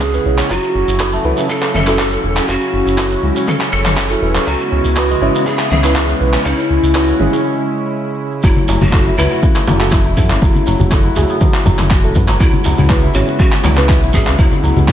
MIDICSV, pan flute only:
0, 0, Header, 1, 2, 480
1, 0, Start_track
1, 0, Key_signature, 3, "minor"
1, 0, Tempo, 495868
1, 488, Time_signature, 4, 2, 24, 8
1, 14443, End_track
2, 0, Start_track
2, 0, Title_t, "Pan flute"
2, 0, Program_c, 0, 75
2, 0, Note_on_c, 0, 68, 114
2, 478, Note_off_c, 0, 68, 0
2, 484, Note_on_c, 0, 66, 97
2, 1147, Note_off_c, 0, 66, 0
2, 1448, Note_on_c, 0, 69, 107
2, 1671, Note_off_c, 0, 69, 0
2, 1689, Note_on_c, 0, 69, 117
2, 2407, Note_on_c, 0, 66, 107
2, 2422, Note_off_c, 0, 69, 0
2, 3361, Note_off_c, 0, 66, 0
2, 3367, Note_on_c, 0, 69, 103
2, 3425, Note_off_c, 0, 69, 0
2, 3603, Note_on_c, 0, 69, 110
2, 4287, Note_off_c, 0, 69, 0
2, 4328, Note_on_c, 0, 66, 104
2, 5287, Note_on_c, 0, 68, 96
2, 5302, Note_off_c, 0, 66, 0
2, 5519, Note_off_c, 0, 68, 0
2, 5525, Note_on_c, 0, 68, 93
2, 5954, Note_off_c, 0, 68, 0
2, 6245, Note_on_c, 0, 64, 101
2, 7167, Note_off_c, 0, 64, 0
2, 8170, Note_on_c, 0, 64, 104
2, 8510, Note_off_c, 0, 64, 0
2, 8533, Note_on_c, 0, 66, 111
2, 8882, Note_on_c, 0, 64, 113
2, 8896, Note_off_c, 0, 66, 0
2, 9834, Note_off_c, 0, 64, 0
2, 9840, Note_on_c, 0, 64, 100
2, 11245, Note_off_c, 0, 64, 0
2, 12004, Note_on_c, 0, 64, 94
2, 12346, Note_off_c, 0, 64, 0
2, 12371, Note_on_c, 0, 64, 88
2, 12702, Note_off_c, 0, 64, 0
2, 12724, Note_on_c, 0, 66, 96
2, 12782, Note_off_c, 0, 66, 0
2, 12962, Note_on_c, 0, 66, 100
2, 13204, Note_on_c, 0, 64, 100
2, 13218, Note_off_c, 0, 66, 0
2, 13684, Note_on_c, 0, 68, 105
2, 13698, Note_off_c, 0, 64, 0
2, 13920, Note_on_c, 0, 64, 97
2, 13934, Note_off_c, 0, 68, 0
2, 14443, Note_off_c, 0, 64, 0
2, 14443, End_track
0, 0, End_of_file